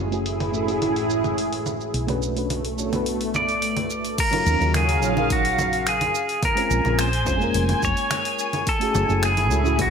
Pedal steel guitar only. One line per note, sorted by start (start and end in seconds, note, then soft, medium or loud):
3.36 4.22 D5 medium
4.20 4.71 A#4 medium
4.76 5.33 G#4 medium
5.32 5.89 F#4 medium
5.89 6.45 G#4 medium
6.45 7.02 A#4 medium
7.01 7.84 C5 medium
7.85 8.70 C#5 medium
8.69 9.26 A4 loud
9.25 9.82 G#4 medium
9.81 9.90 F#4 medium